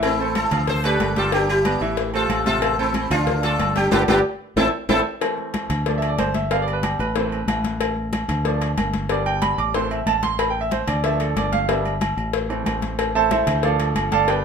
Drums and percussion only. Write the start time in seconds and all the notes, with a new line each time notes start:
0.03 cowbell, high conga, low agogo
0.19 high conga
0.35 cowbell, high conga, low agogo
0.51 cowbell, high conga, low conga, low agogo
0.67 cowbell, high conga, low conga
0.84 cowbell, high conga, low agogo
1.00 cowbell, high conga, low timbale, low agogo
1.16 cowbell, high conga
1.32 cowbell, high conga, low agogo
1.49 high conga, low agogo
1.65 cowbell, high conga, low agogo
1.81 high conga, low agogo
1.97 cowbell, high conga
2.14 high conga, low agogo
2.30 cowbell, high conga, low agogo
2.46 cowbell, high conga
2.62 cowbell, low agogo
2.78 high conga
2.94 cowbell, high conga, low agogo
3.11 cowbell, high conga, low conga, low agogo
3.27 cowbell, high conga, low conga
3.43 cowbell, high conga, low agogo
3.59 cowbell, high conga, low timbale, low agogo
3.75 cowbell, high conga
3.92 cowbell, high conga, high timbale
4.08 cowbell, high conga, high timbale
4.57 cowbell, high conga, high timbale
4.89 cowbell, high conga, high timbale
5.21 cowbell, high conga, low agogo
5.38 high conga
5.54 cowbell, high conga, low agogo
5.70 cowbell, high conga, low conga, low agogo
5.86 cowbell, high conga
6.02 cowbell, high conga, low agogo
6.18 cowbell, high conga, low timbale, low agogo
6.34 cowbell, high conga
6.51 cowbell, high conga, low agogo
6.67 high conga, low agogo
6.83 cowbell, high conga, low agogo
6.99 high conga, low agogo
7.16 cowbell, high conga
7.32 high conga, low agogo
7.48 cowbell, high conga, low agogo
7.64 cowbell, high conga
7.81 cowbell, low agogo
7.96 high conga
8.13 cowbell, high conga, low agogo
8.29 cowbell, high conga, low conga, low agogo
8.45 cowbell, high conga
8.61 cowbell, high conga, low agogo
8.78 cowbell, high conga, low timbale, low agogo
8.93 cowbell, high conga
9.09 cowbell, high conga, low agogo
9.26 high conga, low agogo
9.42 cowbell, high conga, low agogo
9.58 high conga, low agogo
9.74 cowbell, high conga
9.90 high conga, low agogo
10.07 cowbell, high conga, low timbale, low agogo
10.23 cowbell, high conga
10.39 cowbell, high conga, low agogo
10.55 high conga
10.71 cowbell, high conga, low agogo
10.88 cowbell, high conga, low conga, low agogo
11.04 cowbell, high conga
11.20 cowbell, high conga, low agogo
11.37 cowbell, high conga, low timbale, low agogo
11.53 cowbell, high conga
11.69 cowbell, high conga, low agogo
11.85 high conga, low agogo
12.01 cowbell, high conga, low agogo
12.18 high conga, low agogo
12.33 cowbell, high conga
12.50 high conga, low agogo
12.66 cowbell, high conga, low timbale, low agogo
12.82 cowbell, high conga
12.99 cowbell, high conga, low agogo
13.15 high conga
13.31 cowbell, high conga, low agogo
13.47 cowbell, high conga, low conga, low agogo
13.63 cowbell, high conga
13.79 cowbell, high conga, low agogo
13.96 cowbell, high conga, low agogo
14.12 cowbell, high conga
14.28 cowbell, low agogo